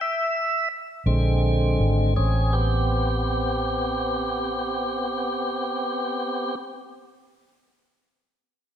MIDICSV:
0, 0, Header, 1, 3, 480
1, 0, Start_track
1, 0, Key_signature, 0, "minor"
1, 0, Tempo, 710900
1, 960, Tempo, 750000
1, 1440, Time_signature, 12, 3, 24, 8
1, 1440, Tempo, 764331
1, 5576, End_track
2, 0, Start_track
2, 0, Title_t, "Tonewheel organ"
2, 0, Program_c, 0, 16
2, 8, Note_on_c, 0, 76, 87
2, 463, Note_off_c, 0, 76, 0
2, 718, Note_on_c, 0, 50, 55
2, 721, Note_on_c, 0, 56, 49
2, 722, Note_on_c, 0, 60, 60
2, 1417, Note_off_c, 0, 50, 0
2, 1418, Note_off_c, 0, 56, 0
2, 1418, Note_off_c, 0, 60, 0
2, 1435, Note_on_c, 0, 68, 57
2, 1438, Note_on_c, 0, 60, 54
2, 1438, Note_on_c, 0, 61, 56
2, 1656, Note_off_c, 0, 60, 0
2, 1664, Note_on_c, 0, 60, 63
2, 1665, Note_on_c, 0, 59, 59
2, 1665, Note_on_c, 0, 67, 64
2, 1678, Note_off_c, 0, 68, 0
2, 1679, Note_off_c, 0, 61, 0
2, 4190, Note_off_c, 0, 60, 0
2, 4191, Note_off_c, 0, 59, 0
2, 4192, Note_off_c, 0, 67, 0
2, 5576, End_track
3, 0, Start_track
3, 0, Title_t, "Fingered electric bass"
3, 0, Program_c, 1, 33
3, 715, Note_on_c, 1, 34, 90
3, 1173, Note_off_c, 1, 34, 0
3, 1202, Note_on_c, 1, 32, 92
3, 1423, Note_off_c, 1, 32, 0
3, 1443, Note_on_c, 1, 33, 82
3, 3970, Note_off_c, 1, 33, 0
3, 5576, End_track
0, 0, End_of_file